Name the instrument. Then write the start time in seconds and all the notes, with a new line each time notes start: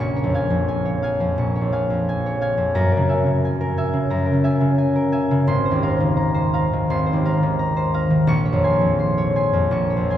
harp
Already playing: A#4 F5 G#5 A#5
0.00 A#1 C#6
0.16 C#5
0.24 F2
0.34 F5 G#5
0.50 F2
0.68 G#5
0.85 C#5
1.02 F5 G#5
1.20 F2
1.38 A#1 C#6
1.55 C#5
1.61 F2
1.72 F5 G#5
1.90 F2
2.09 G#5
2.26 C#5
2.41 F5 G#5
2.58 F2
2.75 F#2 A#5
2.92 A#4
2.97 C#3
3.09 E5 G#5
3.26 C#3
3.45 G#5
3.61 A#4
3.77 E5 G#5
3.93 C#3
4.10 F#2 A#5
4.26 A#4
4.33 C#3
4.44 E5 G#5
4.61 C#3
4.78 G#5
4.96 A#4
5.12 E5 G#5
5.31 C#3
5.47 G#1 C6
5.65 C5
5.71 D#2
5.83 F5 A#5
6.00 D#3
6.17 A#5
6.34 C5
6.54 F5 A#5
6.73 D#3
6.90 G#1 C6
7.06 C5
7.13 D#2
7.25 F5 A#5
7.43 D#3
7.59 A#5
7.76 C5
7.94 F5 A#5
8.10 D#3
8.27 A#1 C#6
8.45 C#5
8.53 F2
8.64 G#5 C6
8.81 F2
8.99 C6
9.18 C#5
9.36 G#5 C6
9.53 F2
9.71 A#1 C#6
9.90 C#5
9.97 F2
10.10 G#5 C6